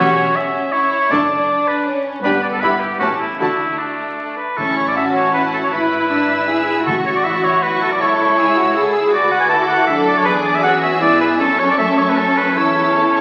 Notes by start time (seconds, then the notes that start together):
Already playing: E1 E2 F#4
0.00 C#4 G4 C#5 E5
0.17 C#5
0.35 C#4 E5
0.72 E4 C#5
0.91 C#5
1.10 F#1 F#2 D4 A4 D5 A5
1.67 B4
1.86 C#4
2.23 G1 G2 B3 D4 G4 B4 B5
2.42 D5
2.52 A4
2.61 G1 G2 E4 G4 B4 B5
2.80 G4
2.99 A1 A2 A3 C#4 F#4 G4 A5
3.19 E4
3.39 D2 D3 A3 D4 E4 F#4 A5
3.78 D4
4.37 B4
4.57 A1 A2 C#4 E4 A4 C#6
4.77 C#5
4.88 D5
4.95 C#4 F#4 E5 A5
5.15 C#5
5.33 E4 F#4 B4
5.54 A4
5.64 C#5
5.72 G#1 E4 B4 B5
6.10 D4 E6
6.48 E4 G#4
6.67 G#4 B4
6.86 A1 A2 F#4 A4 C#6
7.06 C#5
7.15 D5
7.24 E4 E5
7.44 C#5
7.62 B1 E4 B4 C#6
7.82 A4
7.92 D5
7.99 C#2 E4 A4 C#5 C#6
8.19 E4
8.37 G#4 E6
8.56 F#4
8.75 E4 G#4 A4 E6
8.94 G#4
9.12 D2 F#4 B4 D5 D6
9.31 F#5
9.40 G#5
9.49 E4 A4 A5
9.68 F#5
9.87 F#2 D4 A4 E5
10.07 D5
10.17 C#5
10.25 E2 G#4 B4 D6
10.45 D5
10.55 E5
10.64 C#4 F#4 G#4 F#5 E6
10.83 E5
11.02 G#2 B3 E4 D5
11.21 B4
11.40 F#2 C#4 A4 C#6
11.59 C#5
11.70 D5
11.78 A3 A4 E5
11.98 C#5
12.09 B4
12.18 C#4 A4
12.38 B4
12.56 E2 C#4 E4 A4 C#5 E6
12.96 A5
13.16 C#6